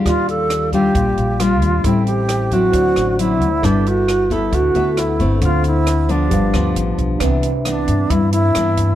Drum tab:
HH |xxxxxxxx|xxxxxxxx|xxxxxxxx|xxxxxxxx|
SD |r-r---r-|--r--r--|r-r---r-|--r--r--|
BD |o--oo--o|o--oo--o|o--oo--o|o--oo--o|

HH |xxxxxxxx|
SD |r-r---r-|
BD |o--oo--o|